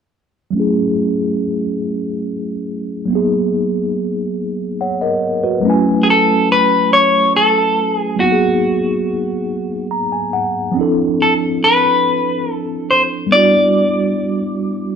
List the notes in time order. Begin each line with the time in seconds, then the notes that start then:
0.51 F#3 A3
0.55 C#4 E4
0.60 G#4
3.06 F#3 A#3
3.10 B3 D#4
3.15 G#4
4.81 C#5 F#5
5.01 A#4 D#5
5.43 F#4 B4
5.60 F#3 A3
5.65 C#4 E4
5.70 G#5
6.03 G#4
6.10 A4
6.52 B4
6.93 C#5
7.36 A4
7.95 G#4
8.16 F#3 A#3 F#4
8.21 B3 D#4
8.25 F#4
8.32 G#4
9.91 A#5
10.12 G#5
10.33 F#5
10.72 F3 C4
10.77 D4 E4
10.81 A4
11.22 A4
11.64 B4
12.52 A4
12.91 C5
13.27 G3 B3
13.32 D4 E4 D5
13.36 F#4